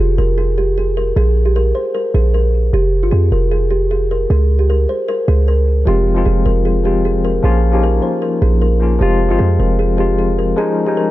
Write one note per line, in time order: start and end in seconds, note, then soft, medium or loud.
0.00 0.18 F1 loud
0.00 0.16 G#4 medium
0.18 1.13 F1 loud
0.18 0.36 A#4 medium
0.38 0.56 G#4 medium
0.58 0.76 G4 medium
0.78 0.95 G#4 medium
0.97 1.15 A#4 medium
1.16 1.73 A#1 loud
1.16 1.44 G#4 loud
1.45 1.55 G4 medium
1.56 1.74 A#4 medium
1.75 1.93 C5 medium
1.95 2.13 A#4 medium
2.14 2.71 A#1 loud
2.14 2.33 G#4 medium
2.34 2.52 A#4 medium
2.73 3.04 F1 loud
2.73 3.01 G4 loud
3.03 3.12 G1 loud
3.03 3.12 F4 medium
3.11 3.31 F2 loud
3.11 3.30 G#4 medium
3.32 4.26 F1 loud
3.32 3.50 A#4 medium
3.51 3.69 G#4 medium
3.71 3.89 G4 medium
3.91 4.09 G#4 medium
4.11 4.29 A#4 medium
4.30 4.87 C#2 loud
4.30 4.58 G#4 medium
4.59 4.68 G4 medium
4.70 4.87 A#4 medium
4.89 5.07 C5 medium
5.08 5.26 A#4 medium
5.28 5.85 C#2 loud
5.28 5.46 G#4 medium
5.48 5.66 A#4 medium
5.85 6.25 F1 loud
5.85 6.06 F3 medium
5.85 6.06 G#3 medium
5.85 6.07 C4 medium
5.85 6.07 F4 loud
5.85 6.15 G4 loud
6.15 6.62 F3 medium
6.15 6.62 G#3 medium
6.15 6.62 C4 medium
6.15 6.25 F4 medium
6.15 6.63 F4 medium
6.26 6.45 F1 loud
6.26 6.44 G#4 medium
6.46 7.40 F1 loud
6.46 6.64 A#4 medium
6.65 6.83 G#4 medium
6.83 7.24 F3 medium
6.83 7.24 G#3 medium
6.83 7.25 C4 medium
6.83 7.25 F4 medium
6.83 7.03 G4 medium
7.05 7.23 G#4 medium
7.25 7.42 A#4 medium
7.42 8.00 A#1 loud
7.42 7.63 F3 medium
7.42 7.63 A#3 medium
7.42 7.64 C#4 medium
7.42 7.64 F4 loud
7.42 7.72 G#4 loud
7.72 8.25 F3 medium
7.72 8.25 A#3 medium
7.72 8.26 C#4 medium
7.72 8.26 D#4 medium
7.72 7.82 G4 medium
7.83 8.01 A#4 medium
8.02 8.20 C5 medium
8.22 8.40 A#4 medium
8.42 8.98 A#1 loud
8.42 8.60 G#4 medium
8.61 8.79 A#4 medium
8.80 8.94 F3 medium
8.80 8.94 A#3 medium
8.80 8.95 C#4 medium
8.80 8.95 F4 medium
8.99 9.32 F1 loud
8.99 9.20 F3 medium
8.99 9.20 G#3 medium
8.99 9.21 C4 medium
8.99 9.21 F4 loud
8.99 9.29 G4 loud
9.29 9.39 G1 loud
9.29 9.75 F3 medium
9.29 9.76 G#3 medium
9.29 9.76 C4 medium
9.29 9.39 F4 medium
9.29 9.77 F4 medium
9.39 9.59 F2 loud
9.39 9.57 G#4 medium
9.60 10.54 F1 loud
9.60 9.77 A#4 medium
9.79 9.97 G#4 medium
9.97 10.37 F3 medium
9.97 10.38 G#3 medium
9.97 10.38 C4 medium
9.97 10.39 F4 medium
9.97 10.16 G4 medium
10.19 10.36 G#4 medium
10.39 10.56 A#4 medium
10.56 10.77 F3 loud
10.56 10.77 G#3 loud
10.56 10.78 C#4 medium
10.56 10.78 D#4 loud
10.56 10.85 G#4 loud
10.85 11.11 F3 medium
10.85 11.11 G#3 medium
10.85 11.11 C#4 medium
10.85 11.11 D#4 medium
10.85 10.96 G4 medium
10.97 11.11 A#4 medium